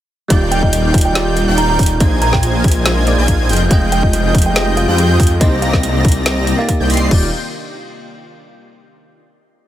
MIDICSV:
0, 0, Header, 1, 8, 480
1, 0, Start_track
1, 0, Key_signature, -3, "major"
1, 0, Tempo, 425532
1, 343, Time_signature, 4, 2, 24, 8
1, 10918, End_track
2, 0, Start_track
2, 0, Title_t, "Digital synth lead"
2, 0, Program_c, 0, 84
2, 341, Note_on_c, 0, 91, 88
2, 1638, Note_off_c, 0, 91, 0
2, 1668, Note_on_c, 0, 91, 111
2, 1995, Note_off_c, 0, 91, 0
2, 2022, Note_on_c, 0, 91, 84
2, 2140, Note_off_c, 0, 91, 0
2, 2259, Note_on_c, 0, 92, 90
2, 3557, Note_off_c, 0, 92, 0
2, 3589, Note_on_c, 0, 92, 107
2, 3915, Note_off_c, 0, 92, 0
2, 3943, Note_on_c, 0, 91, 88
2, 4061, Note_off_c, 0, 91, 0
2, 4184, Note_on_c, 0, 91, 91
2, 5479, Note_off_c, 0, 91, 0
2, 5511, Note_on_c, 0, 91, 113
2, 5836, Note_off_c, 0, 91, 0
2, 5864, Note_on_c, 0, 91, 85
2, 5982, Note_off_c, 0, 91, 0
2, 6102, Note_on_c, 0, 94, 88
2, 7398, Note_off_c, 0, 94, 0
2, 7671, Note_on_c, 0, 91, 101
2, 7756, Note_off_c, 0, 91, 0
2, 7785, Note_on_c, 0, 96, 105
2, 7997, Note_off_c, 0, 96, 0
2, 8025, Note_on_c, 0, 91, 95
2, 8205, Note_off_c, 0, 91, 0
2, 10918, End_track
3, 0, Start_track
3, 0, Title_t, "Kalimba"
3, 0, Program_c, 1, 108
3, 580, Note_on_c, 1, 79, 93
3, 682, Note_off_c, 1, 79, 0
3, 707, Note_on_c, 1, 75, 92
3, 781, Note_off_c, 1, 75, 0
3, 821, Note_on_c, 1, 75, 79
3, 903, Note_off_c, 1, 75, 0
3, 1185, Note_on_c, 1, 79, 90
3, 1260, Note_off_c, 1, 79, 0
3, 1780, Note_on_c, 1, 82, 91
3, 1862, Note_off_c, 1, 82, 0
3, 1912, Note_on_c, 1, 82, 77
3, 1983, Note_off_c, 1, 82, 0
3, 2505, Note_on_c, 1, 82, 94
3, 2605, Note_off_c, 1, 82, 0
3, 2628, Note_on_c, 1, 79, 97
3, 3298, Note_off_c, 1, 79, 0
3, 4422, Note_on_c, 1, 79, 94
3, 4524, Note_off_c, 1, 79, 0
3, 4548, Note_on_c, 1, 75, 94
3, 4621, Note_off_c, 1, 75, 0
3, 4663, Note_on_c, 1, 75, 80
3, 4744, Note_off_c, 1, 75, 0
3, 5031, Note_on_c, 1, 79, 90
3, 5103, Note_off_c, 1, 79, 0
3, 5382, Note_on_c, 1, 77, 90
3, 5463, Note_off_c, 1, 77, 0
3, 5506, Note_on_c, 1, 77, 81
3, 5580, Note_off_c, 1, 77, 0
3, 6100, Note_on_c, 1, 75, 97
3, 6314, Note_off_c, 1, 75, 0
3, 6343, Note_on_c, 1, 77, 96
3, 6555, Note_off_c, 1, 77, 0
3, 7430, Note_on_c, 1, 77, 94
3, 7520, Note_off_c, 1, 77, 0
3, 7540, Note_on_c, 1, 77, 93
3, 8021, Note_off_c, 1, 77, 0
3, 10918, End_track
4, 0, Start_track
4, 0, Title_t, "Supersaw synth"
4, 0, Program_c, 2, 81
4, 341, Note_on_c, 2, 51, 81
4, 341, Note_on_c, 2, 63, 71
4, 341, Note_on_c, 2, 74, 73
4, 341, Note_on_c, 2, 79, 87
4, 342, Note_on_c, 2, 77, 70
4, 1638, Note_off_c, 2, 51, 0
4, 1638, Note_off_c, 2, 63, 0
4, 1638, Note_off_c, 2, 74, 0
4, 1638, Note_off_c, 2, 77, 0
4, 1638, Note_off_c, 2, 79, 0
4, 1666, Note_on_c, 2, 77, 88
4, 1667, Note_on_c, 2, 51, 98
4, 1667, Note_on_c, 2, 63, 93
4, 1667, Note_on_c, 2, 74, 90
4, 1667, Note_on_c, 2, 79, 109
4, 1994, Note_off_c, 2, 51, 0
4, 1994, Note_off_c, 2, 63, 0
4, 1994, Note_off_c, 2, 74, 0
4, 1994, Note_off_c, 2, 77, 0
4, 1994, Note_off_c, 2, 79, 0
4, 2022, Note_on_c, 2, 51, 78
4, 2022, Note_on_c, 2, 63, 72
4, 2022, Note_on_c, 2, 74, 71
4, 2022, Note_on_c, 2, 77, 71
4, 2022, Note_on_c, 2, 79, 87
4, 2140, Note_off_c, 2, 79, 0
4, 2141, Note_off_c, 2, 51, 0
4, 2141, Note_off_c, 2, 63, 0
4, 2141, Note_off_c, 2, 74, 0
4, 2141, Note_off_c, 2, 77, 0
4, 2261, Note_on_c, 2, 65, 74
4, 2261, Note_on_c, 2, 75, 73
4, 2262, Note_on_c, 2, 58, 79
4, 2262, Note_on_c, 2, 72, 75
4, 2262, Note_on_c, 2, 80, 87
4, 3558, Note_off_c, 2, 58, 0
4, 3558, Note_off_c, 2, 65, 0
4, 3558, Note_off_c, 2, 72, 0
4, 3558, Note_off_c, 2, 75, 0
4, 3558, Note_off_c, 2, 80, 0
4, 3587, Note_on_c, 2, 65, 93
4, 3587, Note_on_c, 2, 72, 90
4, 3587, Note_on_c, 2, 75, 88
4, 3588, Note_on_c, 2, 58, 101
4, 3588, Note_on_c, 2, 80, 111
4, 3914, Note_off_c, 2, 65, 0
4, 3914, Note_off_c, 2, 72, 0
4, 3914, Note_off_c, 2, 75, 0
4, 3915, Note_off_c, 2, 58, 0
4, 3915, Note_off_c, 2, 80, 0
4, 3941, Note_on_c, 2, 53, 80
4, 3941, Note_on_c, 2, 65, 75
4, 3941, Note_on_c, 2, 68, 73
4, 3941, Note_on_c, 2, 75, 74
4, 3941, Note_on_c, 2, 79, 88
4, 4060, Note_off_c, 2, 53, 0
4, 4060, Note_off_c, 2, 65, 0
4, 4060, Note_off_c, 2, 68, 0
4, 4060, Note_off_c, 2, 75, 0
4, 4060, Note_off_c, 2, 79, 0
4, 4180, Note_on_c, 2, 53, 80
4, 4180, Note_on_c, 2, 65, 72
4, 4180, Note_on_c, 2, 68, 72
4, 4180, Note_on_c, 2, 75, 73
4, 4180, Note_on_c, 2, 79, 85
4, 5477, Note_off_c, 2, 53, 0
4, 5477, Note_off_c, 2, 65, 0
4, 5477, Note_off_c, 2, 68, 0
4, 5477, Note_off_c, 2, 75, 0
4, 5477, Note_off_c, 2, 79, 0
4, 5507, Note_on_c, 2, 65, 91
4, 5508, Note_on_c, 2, 53, 100
4, 5508, Note_on_c, 2, 68, 93
4, 5508, Note_on_c, 2, 75, 93
4, 5508, Note_on_c, 2, 79, 109
4, 5834, Note_off_c, 2, 65, 0
4, 5835, Note_off_c, 2, 53, 0
4, 5835, Note_off_c, 2, 68, 0
4, 5835, Note_off_c, 2, 75, 0
4, 5835, Note_off_c, 2, 79, 0
4, 5862, Note_on_c, 2, 53, 81
4, 5862, Note_on_c, 2, 65, 74
4, 5862, Note_on_c, 2, 75, 72
4, 5862, Note_on_c, 2, 79, 88
4, 5863, Note_on_c, 2, 68, 73
4, 5981, Note_off_c, 2, 53, 0
4, 5981, Note_off_c, 2, 65, 0
4, 5981, Note_off_c, 2, 68, 0
4, 5981, Note_off_c, 2, 75, 0
4, 5981, Note_off_c, 2, 79, 0
4, 6100, Note_on_c, 2, 82, 87
4, 6101, Note_on_c, 2, 60, 80
4, 6101, Note_on_c, 2, 67, 75
4, 6101, Note_on_c, 2, 74, 73
4, 6101, Note_on_c, 2, 75, 75
4, 7397, Note_off_c, 2, 82, 0
4, 7398, Note_off_c, 2, 60, 0
4, 7398, Note_off_c, 2, 67, 0
4, 7398, Note_off_c, 2, 74, 0
4, 7398, Note_off_c, 2, 75, 0
4, 7668, Note_on_c, 2, 60, 90
4, 7668, Note_on_c, 2, 79, 105
4, 7669, Note_on_c, 2, 67, 88
4, 7669, Note_on_c, 2, 74, 85
4, 7669, Note_on_c, 2, 75, 88
4, 7755, Note_off_c, 2, 60, 0
4, 7755, Note_off_c, 2, 67, 0
4, 7755, Note_off_c, 2, 74, 0
4, 7755, Note_off_c, 2, 75, 0
4, 7755, Note_off_c, 2, 79, 0
4, 7783, Note_on_c, 2, 67, 88
4, 7783, Note_on_c, 2, 74, 89
4, 7783, Note_on_c, 2, 75, 87
4, 7783, Note_on_c, 2, 84, 107
4, 7784, Note_on_c, 2, 60, 95
4, 7995, Note_off_c, 2, 67, 0
4, 7995, Note_off_c, 2, 74, 0
4, 7995, Note_off_c, 2, 75, 0
4, 7995, Note_off_c, 2, 84, 0
4, 7996, Note_off_c, 2, 60, 0
4, 8023, Note_on_c, 2, 74, 80
4, 8024, Note_on_c, 2, 51, 88
4, 8024, Note_on_c, 2, 63, 80
4, 8024, Note_on_c, 2, 77, 77
4, 8024, Note_on_c, 2, 79, 95
4, 8204, Note_off_c, 2, 51, 0
4, 8204, Note_off_c, 2, 63, 0
4, 8204, Note_off_c, 2, 74, 0
4, 8204, Note_off_c, 2, 77, 0
4, 8204, Note_off_c, 2, 79, 0
4, 10918, End_track
5, 0, Start_track
5, 0, Title_t, "Tine electric piano"
5, 0, Program_c, 3, 4
5, 319, Note_on_c, 3, 55, 96
5, 334, Note_on_c, 3, 63, 87
5, 349, Note_on_c, 3, 65, 86
5, 365, Note_on_c, 3, 74, 106
5, 556, Control_c, 3, 64, 127
5, 1264, Note_off_c, 3, 55, 0
5, 1271, Note_off_c, 3, 63, 0
5, 1278, Note_off_c, 3, 65, 0
5, 1278, Note_on_c, 3, 55, 88
5, 1286, Note_off_c, 3, 74, 0
5, 1294, Note_on_c, 3, 63, 80
5, 1308, Note_on_c, 3, 65, 77
5, 1324, Note_on_c, 3, 74, 93
5, 2223, Note_off_c, 3, 55, 0
5, 2231, Note_off_c, 3, 63, 0
5, 2238, Note_off_c, 3, 65, 0
5, 2246, Note_off_c, 3, 74, 0
5, 2253, Note_on_c, 3, 58, 87
5, 2260, Note_on_c, 3, 63, 80
5, 2268, Note_on_c, 3, 68, 80
5, 2275, Note_on_c, 3, 72, 96
5, 2277, Control_c, 3, 64, 0
5, 2420, Note_off_c, 3, 58, 0
5, 2423, Note_off_c, 3, 63, 0
5, 2427, Note_off_c, 3, 68, 0
5, 2431, Note_off_c, 3, 72, 0
5, 2485, Control_c, 3, 64, 127
5, 3453, Note_on_c, 3, 58, 93
5, 3459, Note_on_c, 3, 63, 84
5, 3467, Note_on_c, 3, 68, 87
5, 3474, Note_on_c, 3, 74, 99
5, 3924, Note_off_c, 3, 58, 0
5, 3927, Note_off_c, 3, 63, 0
5, 3931, Note_off_c, 3, 68, 0
5, 3934, Note_off_c, 3, 74, 0
5, 3955, Control_c, 3, 64, 0
5, 4154, Control_c, 3, 64, 127
5, 4160, Note_on_c, 3, 56, 99
5, 4176, Note_on_c, 3, 65, 89
5, 4191, Note_on_c, 3, 79, 90
5, 4206, Note_on_c, 3, 75, 109
5, 5104, Note_off_c, 3, 56, 0
5, 5112, Note_off_c, 3, 65, 0
5, 5119, Note_off_c, 3, 79, 0
5, 5120, Note_on_c, 3, 56, 85
5, 5127, Note_off_c, 3, 75, 0
5, 5136, Note_on_c, 3, 65, 81
5, 5152, Note_on_c, 3, 67, 81
5, 5166, Note_on_c, 3, 75, 95
5, 6064, Note_off_c, 3, 56, 0
5, 6072, Note_off_c, 3, 65, 0
5, 6080, Note_off_c, 3, 67, 0
5, 6087, Note_off_c, 3, 75, 0
5, 6089, Note_on_c, 3, 58, 87
5, 6097, Note_on_c, 3, 63, 80
5, 6104, Note_on_c, 3, 67, 81
5, 6111, Note_on_c, 3, 72, 100
5, 6115, Control_c, 3, 64, 0
5, 6258, Note_off_c, 3, 58, 0
5, 6262, Note_off_c, 3, 63, 0
5, 6265, Note_off_c, 3, 67, 0
5, 6269, Note_off_c, 3, 72, 0
5, 6317, Control_c, 3, 64, 127
5, 7404, Note_on_c, 3, 58, 94
5, 7419, Note_on_c, 3, 63, 88
5, 7434, Note_on_c, 3, 67, 89
5, 7450, Note_on_c, 3, 74, 104
5, 7983, Note_off_c, 3, 58, 0
5, 7989, Note_on_c, 3, 55, 90
5, 7990, Note_off_c, 3, 63, 0
5, 7998, Note_off_c, 3, 67, 0
5, 8006, Note_off_c, 3, 74, 0
5, 8012, Note_on_c, 3, 63, 82
5, 8034, Note_on_c, 3, 65, 78
5, 8035, Control_c, 3, 64, 0
5, 8057, Note_on_c, 3, 74, 98
5, 8186, Note_off_c, 3, 55, 0
5, 8198, Note_off_c, 3, 63, 0
5, 8210, Note_off_c, 3, 65, 0
5, 8222, Note_off_c, 3, 74, 0
5, 10918, End_track
6, 0, Start_track
6, 0, Title_t, "Analog synth pad"
6, 0, Program_c, 4, 89
6, 339, Note_on_c, 4, 51, 82
6, 339, Note_on_c, 4, 74, 73
6, 341, Note_on_c, 4, 65, 75
6, 341, Note_on_c, 4, 67, 91
6, 2241, Note_off_c, 4, 51, 0
6, 2242, Note_off_c, 4, 74, 0
6, 2243, Note_off_c, 4, 65, 0
6, 2243, Note_off_c, 4, 67, 0
6, 2263, Note_on_c, 4, 56, 83
6, 2263, Note_on_c, 4, 58, 74
6, 2264, Note_on_c, 4, 63, 88
6, 3926, Note_off_c, 4, 56, 0
6, 3926, Note_off_c, 4, 58, 0
6, 3940, Note_on_c, 4, 79, 71
6, 3941, Note_on_c, 4, 53, 79
6, 3941, Note_on_c, 4, 56, 86
6, 6079, Note_off_c, 4, 79, 0
6, 6080, Note_off_c, 4, 53, 0
6, 6080, Note_off_c, 4, 56, 0
6, 6105, Note_on_c, 4, 58, 74
6, 6107, Note_on_c, 4, 48, 84
6, 7978, Note_off_c, 4, 63, 0
6, 8005, Note_off_c, 4, 58, 0
6, 8006, Note_off_c, 4, 48, 0
6, 10918, End_track
7, 0, Start_track
7, 0, Title_t, "Detuned saw bass"
7, 0, Program_c, 5, 39
7, 340, Note_on_c, 5, 27, 93
7, 1642, Note_off_c, 5, 27, 0
7, 1668, Note_on_c, 5, 27, 96
7, 1999, Note_off_c, 5, 27, 0
7, 2021, Note_on_c, 5, 27, 93
7, 2239, Note_off_c, 5, 27, 0
7, 2260, Note_on_c, 5, 34, 93
7, 3562, Note_off_c, 5, 34, 0
7, 3587, Note_on_c, 5, 34, 96
7, 3941, Note_on_c, 5, 29, 97
7, 3958, Note_off_c, 5, 34, 0
7, 4159, Note_off_c, 5, 29, 0
7, 4181, Note_on_c, 5, 29, 96
7, 5483, Note_off_c, 5, 29, 0
7, 5507, Note_on_c, 5, 41, 96
7, 5839, Note_off_c, 5, 41, 0
7, 5862, Note_on_c, 5, 41, 98
7, 6079, Note_off_c, 5, 41, 0
7, 6102, Note_on_c, 5, 36, 96
7, 7373, Note_off_c, 5, 36, 0
7, 7669, Note_on_c, 5, 36, 101
7, 7760, Note_off_c, 5, 36, 0
7, 7781, Note_on_c, 5, 36, 97
7, 7999, Note_off_c, 5, 36, 0
7, 8022, Note_on_c, 5, 27, 96
7, 8245, Note_off_c, 5, 27, 0
7, 10918, End_track
8, 0, Start_track
8, 0, Title_t, "Drums"
8, 340, Note_on_c, 9, 36, 121
8, 341, Note_on_c, 9, 42, 84
8, 453, Note_off_c, 9, 36, 0
8, 454, Note_off_c, 9, 42, 0
8, 583, Note_on_c, 9, 42, 70
8, 695, Note_off_c, 9, 42, 0
8, 707, Note_on_c, 9, 36, 59
8, 820, Note_off_c, 9, 36, 0
8, 821, Note_on_c, 9, 42, 86
8, 934, Note_off_c, 9, 42, 0
8, 1061, Note_on_c, 9, 36, 107
8, 1062, Note_on_c, 9, 42, 56
8, 1104, Note_off_c, 9, 42, 0
8, 1104, Note_on_c, 9, 42, 73
8, 1141, Note_off_c, 9, 42, 0
8, 1141, Note_on_c, 9, 42, 90
8, 1174, Note_off_c, 9, 36, 0
8, 1254, Note_off_c, 9, 42, 0
8, 1302, Note_on_c, 9, 38, 120
8, 1302, Note_on_c, 9, 42, 85
8, 1415, Note_off_c, 9, 38, 0
8, 1415, Note_off_c, 9, 42, 0
8, 1541, Note_on_c, 9, 42, 67
8, 1654, Note_off_c, 9, 42, 0
8, 1780, Note_on_c, 9, 42, 82
8, 1893, Note_off_c, 9, 42, 0
8, 2021, Note_on_c, 9, 36, 108
8, 2021, Note_on_c, 9, 46, 91
8, 2063, Note_on_c, 9, 42, 69
8, 2101, Note_off_c, 9, 42, 0
8, 2101, Note_on_c, 9, 42, 83
8, 2133, Note_off_c, 9, 46, 0
8, 2134, Note_off_c, 9, 36, 0
8, 2214, Note_off_c, 9, 42, 0
8, 2261, Note_on_c, 9, 36, 124
8, 2261, Note_on_c, 9, 42, 82
8, 2373, Note_off_c, 9, 42, 0
8, 2374, Note_off_c, 9, 36, 0
8, 2500, Note_on_c, 9, 42, 68
8, 2613, Note_off_c, 9, 42, 0
8, 2627, Note_on_c, 9, 38, 38
8, 2628, Note_on_c, 9, 36, 64
8, 2740, Note_off_c, 9, 38, 0
8, 2740, Note_on_c, 9, 42, 83
8, 2741, Note_off_c, 9, 36, 0
8, 2853, Note_off_c, 9, 42, 0
8, 2981, Note_on_c, 9, 36, 112
8, 2981, Note_on_c, 9, 42, 54
8, 3024, Note_off_c, 9, 42, 0
8, 3024, Note_on_c, 9, 42, 69
8, 3062, Note_off_c, 9, 42, 0
8, 3062, Note_on_c, 9, 42, 82
8, 3094, Note_off_c, 9, 36, 0
8, 3175, Note_off_c, 9, 42, 0
8, 3221, Note_on_c, 9, 38, 126
8, 3221, Note_on_c, 9, 42, 82
8, 3334, Note_off_c, 9, 38, 0
8, 3334, Note_off_c, 9, 42, 0
8, 3461, Note_on_c, 9, 42, 64
8, 3574, Note_off_c, 9, 42, 0
8, 3701, Note_on_c, 9, 42, 82
8, 3702, Note_on_c, 9, 36, 62
8, 3814, Note_off_c, 9, 42, 0
8, 3815, Note_off_c, 9, 36, 0
8, 3941, Note_on_c, 9, 46, 94
8, 3984, Note_on_c, 9, 42, 66
8, 4021, Note_off_c, 9, 42, 0
8, 4021, Note_on_c, 9, 42, 81
8, 4054, Note_off_c, 9, 46, 0
8, 4134, Note_off_c, 9, 42, 0
8, 4181, Note_on_c, 9, 36, 127
8, 4182, Note_on_c, 9, 42, 80
8, 4294, Note_off_c, 9, 36, 0
8, 4295, Note_off_c, 9, 42, 0
8, 4423, Note_on_c, 9, 42, 65
8, 4536, Note_off_c, 9, 42, 0
8, 4548, Note_on_c, 9, 36, 63
8, 4660, Note_off_c, 9, 36, 0
8, 4663, Note_on_c, 9, 42, 82
8, 4775, Note_off_c, 9, 42, 0
8, 4902, Note_on_c, 9, 36, 109
8, 4903, Note_on_c, 9, 42, 51
8, 4945, Note_off_c, 9, 42, 0
8, 4945, Note_on_c, 9, 42, 66
8, 4982, Note_off_c, 9, 42, 0
8, 4982, Note_on_c, 9, 42, 84
8, 5015, Note_off_c, 9, 36, 0
8, 5095, Note_off_c, 9, 42, 0
8, 5143, Note_on_c, 9, 38, 125
8, 5143, Note_on_c, 9, 42, 80
8, 5256, Note_off_c, 9, 38, 0
8, 5256, Note_off_c, 9, 42, 0
8, 5381, Note_on_c, 9, 42, 64
8, 5494, Note_off_c, 9, 42, 0
8, 5622, Note_on_c, 9, 42, 81
8, 5734, Note_off_c, 9, 42, 0
8, 5862, Note_on_c, 9, 36, 113
8, 5862, Note_on_c, 9, 46, 90
8, 5903, Note_on_c, 9, 42, 65
8, 5942, Note_off_c, 9, 42, 0
8, 5942, Note_on_c, 9, 42, 81
8, 5974, Note_off_c, 9, 36, 0
8, 5974, Note_off_c, 9, 46, 0
8, 6055, Note_off_c, 9, 42, 0
8, 6101, Note_on_c, 9, 42, 75
8, 6102, Note_on_c, 9, 36, 126
8, 6214, Note_off_c, 9, 36, 0
8, 6214, Note_off_c, 9, 42, 0
8, 6342, Note_on_c, 9, 42, 64
8, 6455, Note_off_c, 9, 42, 0
8, 6468, Note_on_c, 9, 36, 63
8, 6469, Note_on_c, 9, 38, 38
8, 6581, Note_off_c, 9, 36, 0
8, 6581, Note_on_c, 9, 42, 78
8, 6582, Note_off_c, 9, 38, 0
8, 6694, Note_off_c, 9, 42, 0
8, 6821, Note_on_c, 9, 42, 49
8, 6822, Note_on_c, 9, 36, 111
8, 6863, Note_off_c, 9, 42, 0
8, 6863, Note_on_c, 9, 42, 68
8, 6900, Note_off_c, 9, 42, 0
8, 6900, Note_on_c, 9, 42, 84
8, 6935, Note_off_c, 9, 36, 0
8, 7013, Note_off_c, 9, 42, 0
8, 7060, Note_on_c, 9, 38, 127
8, 7060, Note_on_c, 9, 42, 77
8, 7173, Note_off_c, 9, 38, 0
8, 7173, Note_off_c, 9, 42, 0
8, 7300, Note_on_c, 9, 42, 63
8, 7413, Note_off_c, 9, 42, 0
8, 7542, Note_on_c, 9, 36, 66
8, 7542, Note_on_c, 9, 42, 76
8, 7654, Note_off_c, 9, 42, 0
8, 7655, Note_off_c, 9, 36, 0
8, 7782, Note_on_c, 9, 46, 94
8, 7825, Note_on_c, 9, 42, 62
8, 7863, Note_off_c, 9, 42, 0
8, 7863, Note_on_c, 9, 42, 79
8, 7894, Note_off_c, 9, 46, 0
8, 7976, Note_off_c, 9, 42, 0
8, 8022, Note_on_c, 9, 49, 86
8, 8023, Note_on_c, 9, 36, 114
8, 8135, Note_off_c, 9, 36, 0
8, 8135, Note_off_c, 9, 49, 0
8, 10918, End_track
0, 0, End_of_file